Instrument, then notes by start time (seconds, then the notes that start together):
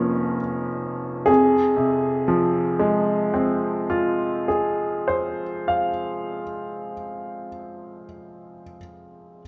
upright piano
Already playing: F1 F2 F3 A#3 C#4 D#4 C5
1.26 F2 G#4
1.76 C3
2.28 F3
2.79 G#3
3.34 C4
3.90 F4
4.48 G#4
5.08 C5
5.68 F5